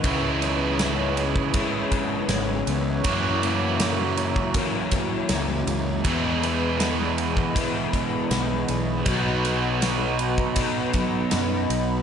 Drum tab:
RD |x-x-x-x-x-x-x-x-|x-x-x-x-x-x-x-x-|x-x-x-x-x-x-x-x-|x-x-x-x-x-x-x-x-|
SD |----o-------o---|----o-------o---|--o-o-------o---|--o-o-------o---|
BD |o------oo-o-----|o------oo-o-----|o------oo-o-----|o------oo-o-----|